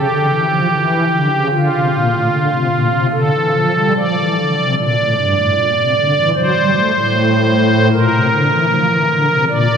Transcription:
pipe organ
Already playing: G4
0.09 D3
0.28 E3
0.49 F3
0.70 E3
1.11 D3
1.32 C#3
1.51 D3 F4
1.71 C3
1.91 A#2
2.11 A2
2.30 D3
2.51 C3
2.70 A#2
2.91 C3
3.12 D3 A4
3.32 E3
3.53 F3
3.74 G3
3.96 F3 D5
4.17 E3
4.37 D3
4.58 C3
4.77 A#2 D5
4.98 A2
5.17 G2
5.37 A2
5.57 A#2
5.77 C3
5.97 D3
6.15 E3
6.35 F#3 C5
6.55 G3
6.75 A3
6.95 A2
7.92 A#2 A#4
8.11 C3
8.30 D3
8.49 E3
8.70 F3
8.89 E3
9.10 D3
9.29 C3
9.49 A#2 D5
9.69 A2

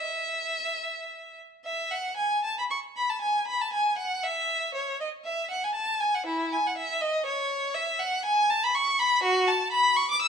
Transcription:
violin
Already playing: E5
1.65 E5
1.91 F#5
2.17 G#5
2.45 A5
2.59 B5
2.70 C#6
2.96 B5
3.09 A5
3.21 G#5
3.47 B5
3.61 A5
3.73 G#5
3.98 F#5
4.23 E5
4.75 C#5
5.01 D#5
5.25 E5
5.51 F#5
5.64 G#5
5.75 A5
6.00 G#5
6.14 F#5
6.26 E4
6.52 G#5
6.67 F#5
6.77 E5
7.01 D#5
7.26 C#5
7.74 E5
7.99 F#5
8.25 G#5
8.50 A5
8.64 B5
8.75 C#6
8.99 B5
9.23 F#4
9.48 A5
9.72 B5
9.97 C#6
10.11 D6
10.22 E6

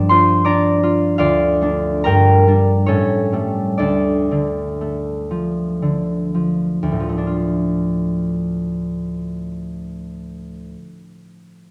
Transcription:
harp
Already playing: G2 F3 D4 A#4 D5 G5 A#5
0.09 F4 C5 C6
0.45 D4 D5 A#5 D6
0.83 F4
1.18 D2 F4 D5 F5
1.61 A3 D4
2.04 G2 A#4 G5 A#5
2.47 G3 D4
2.86 A2 C#4 A4 C#5
3.32 G3 A3
3.78 D2 D4 A4 D5
4.31 D3
4.81 A3
5.31 F3
5.82 D3
6.35 F3
6.83 D2
6.92 A2
7.00 F3
7.09 A3
7.18 D4
7.27 F4

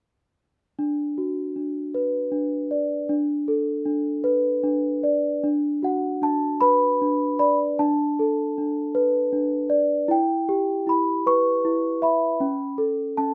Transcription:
celesta
0.79 D4
1.18 F#4
1.56 D4
1.95 B4
2.32 D4
2.71 D5
3.09 D4
3.48 A4
3.85 D4
4.24 B4
4.64 D4
5.03 D5
5.44 D4
5.83 F#4 F#5
6.22 D4 A5
6.61 B4 B5
7.01 D4
7.39 D5 B5
7.79 D4 A5
8.19 A4
8.58 D4
8.95 B4
9.33 D4
9.70 D5
10.08 E4 G5
10.49 G4
10.87 E4 B5
11.27 B4 C#6
11.65 E4
12.02 E5 B5
12.40 C#4
12.78 A4
13.17 C#4 A5

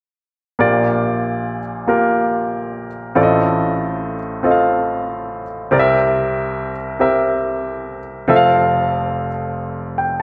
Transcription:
grand piano
0.59 A#1 A#2 A#3 F4 G4 D5
1.87 A#3 F4 G4 A#4
3.15 A1 A2 C4 F4 A4 D5
3.23 D#5
4.43 C4 F4 A4 D#5
4.51 F5
5.71 C2 C3 C4 G4 A#4 D5
5.79 E5
7.00 C4 G4 A#4 E5
8.28 F1 F2 C4 F4 A4 E5
8.36 F5
9.98 G5

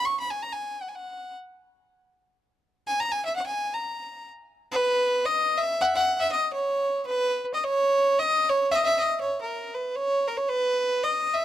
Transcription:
fiddle
0.05 C#6
0.20 B5
0.30 G#5
0.43 A#5
0.53 G#5
0.82 F#5
0.88 G#5
0.95 F#5
2.87 G#5
3.00 A#5
3.12 G#5
3.25 E5
3.36 F#5
3.46 G#5
3.74 A#5
4.72 B4
5.25 D#5
5.57 E5
5.81 E5 F#5
5.96 F#5
6.20 E5
6.32 D#5
6.53 C#5
7.06 B4
7.54 D#5
7.64 C#5
8.19 D#5
8.50 C#5
8.71 D#5 E5
8.86 E5
8.98 D#5
9.21 C#5
9.41 A#4
9.74 B4
9.96 C#5
10.28 A#4
10.37 C#5
10.49 B4
11.04 D#5
11.34 E5

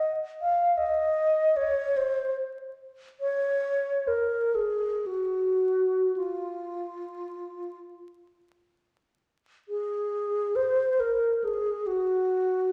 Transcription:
alto flute
Already playing: D#5
0.41 F5
0.77 D#5
1.56 C#5
1.97 C5
3.21 C#5
4.08 A#4
4.55 G#4
5.06 F#4
6.16 F4
9.69 G#4
10.56 C5
11.00 A#4
11.44 G#4
11.87 F#4

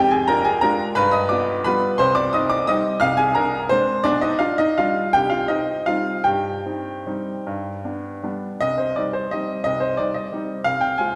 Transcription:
upright piano
Already playing: F2 G4 G5
0.11 G#4 G#5
0.28 D4 F4 A#4 A#5
0.44 G#4 G#5
0.61 G#3 D4 F4 A#4 A#5
0.95 G2 B4 B5
1.11 D#5 D#6
1.29 B3 F4 D5 D6
1.64 G3 B3 F4 B4 B5
1.98 C2 C5 C6
2.15 D5 D6
2.33 C4 D#4 D#5 D#6
2.50 D5 D6
2.67 G3 C4 D#4 D#5 D#6
3.00 C2 F5 F6
3.17 G#4 G#5
3.35 D4 A#4 A#5
3.69 G#3 C4 D4 C5
4.04 B1 D4 D5
4.21 D#4 D#5
4.39 D4 F4 F5
4.58 D#4 D#5
4.78 G3 D4 F4 F5
5.13 C2 G4 G5
5.30 F4 F5
5.48 C4 D#4 D#5
5.86 G3 C4 D#4 F4 F5
6.24 G2 G4 G5
6.65 C4 D#4
7.07 G3 C4 D#4
7.47 G2
7.84 B3 D4
8.23 G3 B3 D4
8.61 C2 D#5
8.78 C5
8.96 G3 C4 D#4 D5
9.13 C5
9.31 G3 C4 D#4 D#5
9.64 C2 D#5
9.80 C5
9.97 G3 C4 D#4 D5
10.14 D#5
10.33 G3 C4 D#4
10.64 C2 F5
10.81 G5
10.98 G#3 C4 F4 G#5

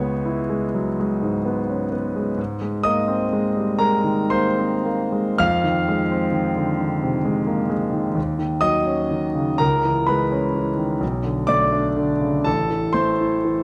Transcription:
grand piano
Already playing: C#2 G#3 C#5 C#6
0.00 B3
0.25 E4
0.50 G#3
0.74 F#3
1.00 G#3
1.22 G#2
1.45 B3
1.70 C#4
1.92 B3
2.16 G#3
2.37 G#2
2.62 G#3
2.83 A#3 D#5 D#6
3.08 C4
3.33 G#3
3.57 G3
3.79 G#3 A#4 A#5
4.04 D#3
4.30 A#3 C5 C6
4.58 C4
4.85 A#3
5.12 G#3
5.38 F2 F5 F6
5.64 D#3
5.88 G#3
6.11 C4
6.32 D#3
6.56 D3
6.79 D#3
7.03 C3
7.25 G#3
7.47 A#3
7.70 G#3
7.93 D#3
8.15 D#2
8.39 D#3
8.61 F#3 D#5 D#6
8.86 C#4
9.11 D#3
9.35 C#3
9.58 C#2 A#4 A#5
9.85 E3
10.07 G#3 B4 B5
10.31 C#4
10.54 E3
10.77 D#3
11.00 B1
11.24 D3
11.47 A3 D5 D6
11.72 D4
11.96 D3
12.21 C#3
12.44 A1 A4 A5
12.70 E3
12.93 A3 C5 C6
13.21 E4
13.45 E3

